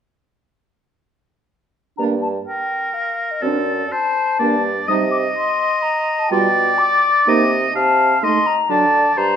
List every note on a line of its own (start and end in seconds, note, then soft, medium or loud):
1.97 2.39 G2 soft
1.97 2.16 A#3 soft
1.97 2.15 D4 soft
1.97 2.03 A#5 soft
2.22 2.28 A5 soft
2.46 3.44 A#4 soft
2.46 2.95 G5 soft
2.94 3.33 F5 soft
3.31 3.43 D#5 soft
3.42 3.84 F#2 soft
3.42 3.60 C4 soft
3.42 3.60 D4 soft
3.42 3.94 A4 soft
3.42 3.90 D5 soft
3.91 4.39 C5 soft
3.91 4.62 A5 soft
4.39 4.80 G2 soft
4.39 4.56 A#3 soft
4.39 4.57 D4 soft
4.39 4.89 D5 soft
4.87 5.28 C3 soft
4.87 5.05 G3 soft
4.87 5.05 D#4 soft
4.87 6.31 D#5 medium
4.87 4.94 D#6 medium
5.11 5.17 D6 soft
5.36 5.84 C6 medium
5.82 6.21 A#5 medium
6.19 6.30 A5 medium
6.29 6.72 B2 soft
6.29 6.48 G3 soft
6.29 6.48 F4 soft
6.29 7.30 D5 medium
6.29 6.80 G5 medium
6.78 7.51 D6 medium
7.27 7.67 C3 medium
7.27 7.44 A#3 soft
7.27 7.44 D#4 soft
7.27 7.75 D#5 medium
7.74 8.15 C3 soft
7.74 8.25 F5 medium
7.74 8.18 A5 medium
8.22 8.39 A3 soft
8.22 8.39 D#4 soft
8.22 8.56 D#5 medium
8.22 8.48 C6 medium
8.47 8.72 A#5 medium
8.69 9.09 D3 soft
8.69 8.85 F#3 soft
8.69 8.85 D4 soft
8.69 9.19 D5 medium
8.69 9.16 A5 medium
9.16 9.36 G2 soft
9.16 9.36 C5 soft
9.16 9.36 A#5 medium